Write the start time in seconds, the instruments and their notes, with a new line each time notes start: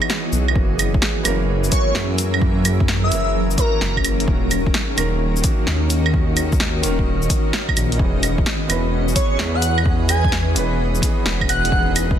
Already playing: felt piano E3 B3 D#4 G#4 C#5, ambient pad E3 B3 F#4 G#4 D#5
0.02 claves
0.10 snare, claves, shaker
0.32 detuned saw bass B1, shaker
0.48 felt piano E3, claves
0.54 detuned saw bass F#1, ambient pad F#3, felt piano A#3 C#4, kick
0.59 felt piano F#4
0.78 ambient pad A#4, open hi-hat, claves, shaker
0.94 ambient pad C#4 E5, kick
1.02 snare
1.23 detuned saw bass F#1, felt piano E3 A#3 C#4, open hi-hat, claves, shaker
1.27 felt piano A#4
1.64 shaker
1.70 felt piano E3 A#3 C#4, digital synth lead C#5, kick, open hi-hat, shaker
1.74 felt piano F#4
1.87 digital synth lead C#5
1.95 detuned saw bass F#2, snare
2.18 open hi-hat, shaker
2.34 felt piano E3, claves
2.41 felt piano A#3 C#4, kick
2.46 felt piano F#4
2.65 open hi-hat, claves, shaker
2.80 kick
2.88 snare
3.04 digital synth lead E5
3.10 detuned saw bass F#1, felt piano E3 A#3 C#4 A#4, open hi-hat, shaker
3.51 shaker
3.56 felt piano E3 A#3 C#4 F#4, digital synth lead A#4, kick, open hi-hat, shaker
3.81 detuned saw bass F#1, snare
3.97 kick, claves
4.04 open hi-hat, claves, shaker
4.20 felt piano D#3, open hi-hat
4.26 detuned saw bass D#1, ambient pad D#3, felt piano A#3 C#4, kick
4.32 felt piano F#4
4.51 open hi-hat, claves, shaker
4.63 ambient pad D#5, kick
4.73 ambient pad F#4, snare
4.96 detuned saw bass D#1, felt piano D#3 A#3 C#4 A#4, open hi-hat, claves, shaker
5.36 shaker
5.42 felt piano D#3 A#3 C#4 F#4, kick, open hi-hat, shaker
5.67 detuned saw bass D#2, snare
5.90 open hi-hat, shaker
6.06 claves
6.10 felt piano D#3 A#3, kick
6.15 felt piano C#4 F#4
6.37 open hi-hat, claves, shaker
6.52 kick, shaker
6.60 snare
6.82 detuned saw bass D#1, felt piano D#3 A#3 C#4 A#4, open hi-hat, shaker
6.99 kick
7.22 shaker
7.30 kick, open hi-hat, shaker
7.53 snare
7.69 kick, claves
7.76 detuned saw bass A#1, open hi-hat, claves, shaker
7.92 open hi-hat
7.96 detuned saw bass E1, felt piano E3 B3, ambient pad E3, kick
8.02 felt piano C#4 G#4
8.23 open hi-hat, claves, shaker
8.28 ambient pad G#4
8.38 kick
8.46 snare
8.67 detuned saw bass E1, felt piano E3 B3 C#4 B4, ambient pad B4, open hi-hat, claves, shaker
9.08 shaker
9.13 felt piano E3 B3 C#4, digital synth lead C#5, kick, open hi-hat, shaker
9.18 felt piano G#4
9.31 digital synth lead C#5
9.39 detuned saw bass E2, snare
9.54 digital synth lead F#5
9.62 open hi-hat, shaker
9.78 claves
9.82 felt piano E3 B3, kick
9.87 felt piano C#4 G#4
10.09 digital synth lead G#5, open hi-hat, claves, shaker
10.24 kick
10.32 snare
10.54 detuned saw bass E1, felt piano E3 B3 C#4 B4, open hi-hat, shaker
10.95 shaker
11.01 felt piano E3 B3 C#4 G#4, kick, open hi-hat, shaker
11.26 detuned saw bass E1, snare
11.41 kick, claves
11.49 digital synth lead F#5, open hi-hat, claves, shaker
11.65 felt piano E3, open hi-hat
11.71 detuned saw bass E1, felt piano B3 D#4, kick
11.76 felt piano G#4
11.96 open hi-hat, claves, shaker
12.11 kick